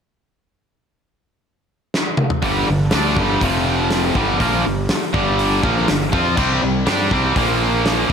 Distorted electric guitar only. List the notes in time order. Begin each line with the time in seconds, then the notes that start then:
2.43 G2 D3 G3
2.69 G2 D3
2.92 D3 A3 D4
3.18 G2 D3 G3
3.42 F2 C3 F3
4.15 G2 D3 G3
4.40 A#2 F3 A#3
4.65 G2 D3
5.14 G2 D3 G3
5.63 A#2 F3 A#3
5.88 G2 D3
6.12 F3 C4 F4
6.37 C3 G3 C4
6.63 C3 G3
6.86 G3 D4 G4
7.12 C3 G3 C4
7.36 A#2 F3 A#3
8.09 C3